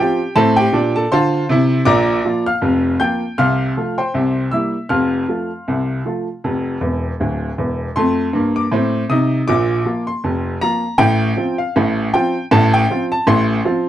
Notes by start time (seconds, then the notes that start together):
Already playing: G5
0.00 F3 C4 F4 G4
0.36 A2 C4 A4 A5
0.57 G4 G5
0.72 A#2 D4
0.96 A4 A5
1.12 D3 F4 C5 A5 C6
1.49 C3 E4
1.85 A#1 A#2 D5 A#5 D6
2.25 F3 A#3 F4
2.46 F5 F6
2.62 F1 F2
3.00 F3 A#3 F4 G5 G6
3.38 C2 C3 F5 C6 F6
3.77 F3 A3 F4
3.98 C5 G5 C6
4.14 C2 C3
4.51 G3 A#3 E4 E5 E6
4.89 F1 F2 F5 C6 F6
5.28 F3 A3 F4
5.68 C2 C3
6.05 F3 A3 F4
6.44 F1 F2
6.81 E1 E2
7.20 D1 D2
7.58 E1 E2
7.96 F2 A3 C6
8.33 G2 A#3
8.56 D6
8.72 A2 C4
9.09 C3 D#4 D#6
9.48 A#1 A#2 D6
9.85 F3 A#3 F4
10.07 C6
10.24 F1 F2
10.61 F3 A#3 F4 A#5
10.98 A1 A2 G5
11.36 F3 C4 F4
11.58 F5
11.76 A1 A2
12.14 F3 C4 F4 G5
12.51 A1 A2 A5
12.74 G5
12.90 F3 C4 F4
13.12 A5
13.27 A1 A2 C6
13.65 F3 C4 F4